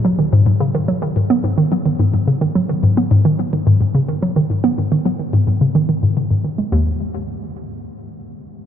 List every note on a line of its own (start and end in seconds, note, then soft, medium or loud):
0.05 0.10 F#3 medium
0.19 0.24 D#3 medium
0.33 0.41 G#2 loud
0.46 0.52 G#2 medium
0.60 0.66 C#3 loud
0.75 0.83 D#3 medium
0.88 0.97 F#3 medium
1.02 1.07 D#3 medium
1.16 1.25 G#2 medium
1.30 1.43 B3 medium
1.44 1.53 G#2 medium
1.58 1.66 D#3 medium
1.72 1.77 F#3 medium
1.86 1.91 D#3 medium
1.99 2.08 G#2 medium
2.14 2.19 G#2 medium
2.28 2.33 C#3 medium
2.41 2.50 D#3 medium
2.55 2.64 F#3 medium
2.69 2.74 D#3 medium
2.83 2.92 G#2 medium
2.97 3.10 B3 medium
3.11 3.20 G#2 medium
3.25 3.34 D#3 medium
3.39 3.44 F#3 medium
3.53 3.58 D#3 medium
3.67 3.75 G#2 medium
3.81 3.86 G#2 medium
3.95 3.99 C#3 medium
4.08 4.17 D#3 medium
4.23 4.31 F#3 medium
4.36 4.41 D#3 medium
4.50 4.59 G#2 medium
4.64 4.77 B3 medium
4.78 4.86 G#2 medium
4.92 5.00 D#3 medium
5.06 5.11 F#3 medium
5.19 5.24 D#3 medium
5.33 5.42 G#2 medium
5.47 5.52 G#2 medium
5.61 5.66 C#3 medium
5.75 5.83 D#3 medium
5.89 5.94 D#3 medium
6.03 6.16 G#2 medium
6.17 6.22 C#3 medium
6.31 6.39 G#2 medium
6.44 6.53 D#3 medium
6.58 6.63 G#3 medium
6.72 6.98 D#2 medium